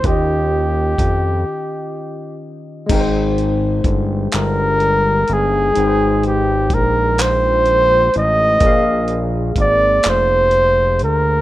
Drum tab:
CC |------|x-----|------|------|
HH |x-x---|xxxxxx|xxxxxx|xxxxxx|
CP |------|---x--|---x--|---x--|
BD |o-o---|o-o---|--o---|o-o---|